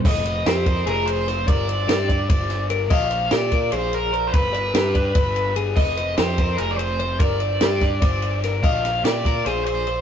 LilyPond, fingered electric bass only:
\new Staff \with { instrumentName = "Fingered electric bass" } { \clef bass \time 7/8 \key f \dorian \tempo 4 = 147 f,,4 f,4 f,,4. | g,,4 g,4 g,,4. | bes,,4 bes,4 bes,,4. | g,,4 g,4 g,,4. |
f,,4 f,4 f,,4. | g,,4 g,4 g,,4. | bes,,4 bes,4 bes,,4. | }